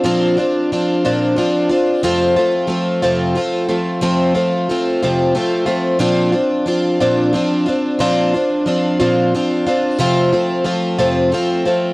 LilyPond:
\new Staff \with { instrumentName = "Twelve-string acoustic guitar" } { \time 6/8 \key f \major \tempo 4. = 60 <bes, f c' d' f'>8 <c' d' f'>8 <f c' d' f'>8 <bes, f c' d' f'>8 <f c' d' f'>8 <c' d' f'>8 | <f, c f a c' f'>8 <f a c' f'>8 <f a c' f'>8 <f, c f a c' f'>8 <f a c' f'>8 <f a c' f'>8 | <f, c f a c' f'>8 <f a c' f'>8 <f a c' f'>8 <f, c f a c' f'>8 <f a c' f'>8 <f a c' f'>8 | <bes, f c' d' f'>8 <c' d' f'>8 <f c' d' f'>8 <bes, f c' d' f'>8 <f c' d' f'>8 <c' d' f'>8 |
<bes, f c' d' f'>8 <c' d' f'>8 <f c' d' f'>8 <bes, f c' d' f'>8 <f c' d' f'>8 <c' d' f'>8 | <f, c f a c' f'>8 <f a c' f'>8 <f a c' f'>8 <f, c f a c' f'>8 <f a c' f'>8 <f a c' f'>8 | }